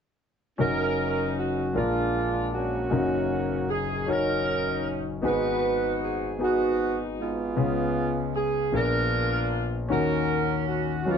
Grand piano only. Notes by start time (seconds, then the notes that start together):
0.58 F#1 F#2 C#4 D#4 F#4 A#4
1.73 A#1 A#2 D4 F4 G#4 A#4
2.89 F#1 F#2 C#4 D#4 F4 A#4
2.98 F#4
4.06 C#4 D#4 F#4 C#5
5.22 G#1 G#2 B3 D#4 F#4 G#4
6.39 B3 D#4 F#4 G#4
7.56 C#2 C#3 B3 C#4 F4 G#4
8.71 A#1 A#2 B3 D4 G#4 A#4
9.89 D#2 D#3 C#4 D#4 F#4 A#4
11.05 F#3 C#4 D#4 B4
11.14 C#5